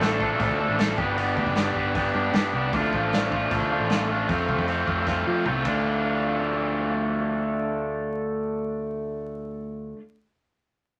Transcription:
0.00 0.35 A1 medium
0.00 0.21 F3 medium
0.00 0.21 A3 medium
0.00 0.20 D4 medium
0.00 0.19 A4 medium
0.00 snare medium
0.00 open hi-hat soft
0.20 0.37 F3 medium
0.20 0.38 A3 medium
0.20 0.40 D4 medium
0.20 0.40 A4 medium
0.20 kick medium
0.39 0.49 A1 medium
0.39 0.77 F3 medium
0.39 0.60 A3 medium
0.39 0.60 D4 medium
0.39 0.58 A4 medium
0.39 kick loud
0.39 open hi-hat soft
0.50 0.67 D2 medium
0.59 0.78 A3 medium
0.59 0.79 D4 medium
0.59 0.80 A4 medium
0.69 0.95 A1 medium
0.78 0.97 F3 medium
0.78 0.97 A3 medium
0.78 0.99 D4 medium
0.78 0.98 A4 loud
0.78 snare loud
0.78 open hi-hat soft
0.98 1.33 G1 loud
0.98 1.16 B3 medium
0.98 1.18 D4 medium
0.98 1.18 G4 medium
0.98 kick loud
1.17 1.54 B3 medium
1.17 1.38 D4 medium
1.17 1.35 G4 medium
1.17 open hi-hat medium
1.36 1.48 D2 medium
1.36 1.57 D4 medium
1.36 1.56 G4 medium
1.36 kick medium
1.46 1.73 G1 medium
1.46 kick medium
1.55 1.76 B3 medium
1.55 1.76 D4 medium
1.55 1.74 G4 medium
1.55 snare medium
1.55 open hi-hat soft
1.75 2.11 G1 medium
1.75 1.93 B3 medium
1.75 1.94 D4 medium
1.75 1.95 G4 medium
1.75 kick medium
1.94 2.32 B3 medium
1.94 2.15 D4 medium
1.94 2.13 G4 medium
1.94 kick loud
1.94 open hi-hat soft
2.14 2.32 G2 medium
2.14 2.34 D4 medium
2.14 2.34 G4 medium
2.33 2.52 G2 loud
2.33 2.72 B3 medium
2.33 2.54 D4 medium
2.33 2.52 G4 loud
2.33 snare loud
2.33 open hi-hat medium
2.53 2.71 C2 medium
2.53 2.73 D4 medium
2.53 2.72 G4 medium
2.73 2.91 D2 loud
2.73 3.11 F3 medium
2.73 2.94 A3 medium
2.73 2.92 D4 medium
2.73 2.92 F4 medium
2.73 kick loud
2.73 open hi-hat medium
2.92 3.47 A1 medium
2.92 3.12 A3 medium
2.92 3.13 D4 medium
2.92 3.14 F4 medium
2.92 kick medium
3.12 3.33 F3 medium
3.12 3.33 A3 medium
3.12 3.31 D4 medium
3.12 3.31 F4 medium
3.12 snare loud
3.12 open hi-hat soft
3.31 3.50 F3 medium
3.31 3.50 A3 medium
3.31 3.50 D4 medium
3.31 3.52 F4 medium
3.31 kick medium
3.50 3.60 A1 medium
3.50 3.89 F3 medium
3.50 3.72 A3 medium
3.50 3.70 D4 medium
3.50 3.70 F4 medium
3.50 kick loud
3.50 open hi-hat soft
3.61 3.79 D2 medium
3.70 3.90 A3 soft
3.70 3.90 D4 medium
3.70 3.91 F4 medium
3.80 4.25 A1 medium
3.90 7.40 F3 medium
3.90 4.11 A3 medium
3.90 4.09 D4 loud
3.90 4.09 F4 loud
3.90 snare loud
3.90 open hi-hat soft
4.09 4.28 A3 medium
4.09 4.28 D4 medium
4.09 4.30 F4 medium
4.28 4.47 F2 loud
4.28 4.66 A3 medium
4.28 4.49 C4 medium
4.28 4.46 F4 medium
4.28 kick loud
4.28 open hi-hat soft
4.48 4.58 C2 medium
4.48 4.67 C4 soft
4.48 4.68 F4 medium
4.48 kick medium
4.58 4.85 F2 medium
4.58 kick medium
4.67 4.88 A3 medium
4.67 4.87 C4 medium
4.67 4.85 F4 medium
4.67 open hi-hat soft
4.87 5.23 F2 medium
4.87 5.05 A3 medium
4.87 5.06 C4 medium
4.87 5.07 F4 medium
4.87 kick medium
5.06 5.44 A3 medium
5.06 5.27 C4 medium
5.06 5.25 F4 medium
5.06 kick loud
5.06 snare soft
5.26 5.45 F3 medium
5.26 5.45 C4 soft
5.26 5.46 F4 medium
5.45 5.64 C2 medium
5.45 5.63 A3 medium
5.45 5.66 C4 medium
5.45 5.66 F4 loud
5.45 mid tom medium
5.64 9.93 D2 medium
5.64 9.96 A3 medium
5.64 9.98 D4 loud
5.64 9.99 F4 medium
5.64 kick medium
5.64 ride medium

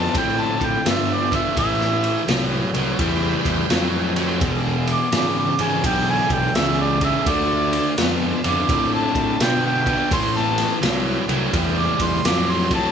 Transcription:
0.00 0.12 D3 medium
0.00 1.53 F3 medium
0.00 0.12 B3 medium
0.00 1.54 E4 medium
0.00 1.53 D5 medium
0.00 0.15 A5 medium
0.13 0.48 A2 medium
0.13 0.80 D3 medium
0.13 0.81 C4 medium
0.13 kick loud
0.13 ride medium
0.17 0.42 G5 loud
0.41 0.67 A5 loud
0.61 0.79 A2 medium
0.61 kick medium
0.61 ride medium
0.65 0.87 G5 loud
0.85 1.37 G1 medium
0.85 1.27 D3 medium
0.85 1.27 B3 medium
0.85 1.15 E5 medium
0.85 snare loud
0.85 ride medium
1.13 1.34 D5 medium
1.32 1.54 D3 medium
1.32 1.55 B3 medium
1.32 1.57 E5 loud
1.32 kick medium
1.32 ride medium
1.56 2.08 A1 medium
1.56 2.23 A2 medium
1.56 2.23 E3 medium
1.56 4.39 B4 medium
1.56 4.39 C5 medium
1.56 2.27 E5 loud
1.56 4.38 G5 medium
1.56 kick loud
1.56 ride medium
1.81 snare soft
2.04 ride medium
2.28 2.61 C2 loud
2.28 2.70 A2 medium
2.28 2.70 F#3 medium
2.28 snare loud
2.28 ride medium
2.73 2.92 C2 medium
2.73 2.97 A2 medium
2.73 2.97 F#3 medium
2.73 ride medium
2.99 3.33 E2 medium
2.99 3.65 A2 medium
2.99 3.66 G3 loud
2.99 kick loud
2.99 ride medium
3.45 3.63 E2 medium
3.45 kick medium
3.45 ride medium
3.70 4.43 F2 medium
3.70 4.12 A2 medium
3.70 4.12 F#3 medium
3.70 snare loud
3.70 ride medium
4.16 4.39 A2 medium
4.16 4.39 F#3 medium
4.16 ride medium
4.41 4.93 E1 loud
4.41 5.07 E2 medium
4.41 5.08 B2 medium
4.41 7.24 G#3 medium
4.41 7.23 G4 medium
4.41 7.24 D5 medium
4.41 kick loud
4.41 ride loud
4.87 ride medium
4.93 5.14 D6 loud
5.12 5.46 G#1 medium
5.12 5.54 E2 medium
5.12 5.54 C#3 medium
5.12 5.37 D6 medium
5.12 snare loud
5.12 ride medium
5.39 5.63 D6 medium
5.59 5.77 G#1 medium
5.59 5.82 E2 medium
5.59 5.82 C#3 medium
5.59 5.84 G#5 medium
5.59 ride medium
5.84 6.18 B1 medium
5.84 6.50 E2 medium
5.84 6.51 D3 medium
5.84 6.08 G5 loud
5.84 kick loud
5.84 ride loud
6.10 6.32 G#5 loud
6.30 6.48 B1 medium
6.30 6.57 G5 loud
6.30 kick medium
6.30 ride medium
6.55 7.07 C#2 medium
6.55 6.97 E2 medium
6.55 6.97 C#3 medium
6.55 6.82 E5 medium
6.55 snare loud
6.55 ride medium
6.80 7.03 D5 medium
7.01 7.24 E2 medium
7.01 7.24 C#3 medium
7.01 7.29 E5 loud
7.01 kick medium
7.01 ride medium
7.26 7.78 D2 loud
7.26 7.93 D3 loud
7.26 7.93 A3 loud
7.26 10.09 D4 medium
7.26 10.09 F4 medium
7.26 7.96 D5 loud
7.26 10.09 E5 medium
7.26 kick loud
7.26 ride loud
7.73 ride medium
7.98 8.32 F2 loud
7.98 8.40 D3 medium
7.98 8.40 B3 loud
7.98 snare loud
7.98 ride medium
8.44 8.63 F2 medium
8.44 8.67 D3 medium
8.44 8.67 B3 medium
8.44 8.93 D6 loud
8.44 ride medium
8.69 9.03 A2 medium
8.69 9.35 D3 medium
8.69 9.36 C4 medium
8.69 kick loud
8.69 ride medium
8.94 9.40 A5 medium
9.15 9.33 A2 medium
9.15 kick medium
9.15 ride medium
9.40 9.92 B2 medium
9.40 9.82 D3 medium
9.40 9.82 B3 medium
9.40 9.64 G5 medium
9.40 snare loud
9.40 ride medium
9.66 10.11 G5 loud
9.86 10.09 D3 medium
9.86 10.09 B3 medium
9.86 kick medium
9.86 ride medium
10.11 10.63 A1 loud
10.11 10.77 A2 medium
10.11 10.78 E3 loud
10.11 10.35 C#4 medium
10.11 10.35 C5 medium
10.11 10.35 G#5 medium
10.11 10.38 C6 loud
10.11 kick loud
10.11 ride loud
10.36 12.92 C4 medium
10.36 12.92 B4 medium
10.36 12.92 G5 medium
10.36 10.74 A5 loud
10.36 snare soft
10.58 snare soft
10.58 ride medium
10.82 11.16 C2 medium
10.82 11.24 A2 medium
10.82 11.24 F#3 medium
10.82 snare loud
10.82 ride medium
11.28 11.47 C2 medium
11.28 11.51 A2 medium
11.28 11.52 F#3 medium
11.28 ride medium
11.53 11.87 E2 loud
11.53 12.20 A2 medium
11.53 12.20 G3 medium
11.53 kick loud
11.53 ride medium
11.79 12.05 D6 medium
11.99 12.18 E2 medium
11.99 kick medium
11.99 ride medium
12.03 12.29 C6 loud
12.24 12.76 F2 medium
12.24 12.67 A2 medium
12.24 12.67 F#3 loud
12.24 12.53 D6 medium
12.24 snare loud
12.24 ride loud
12.51 12.73 C6 loud
12.71 12.92 A2 medium
12.71 12.92 F#3 medium
12.71 12.92 A5 loud
12.71 kick medium
12.71 ride medium

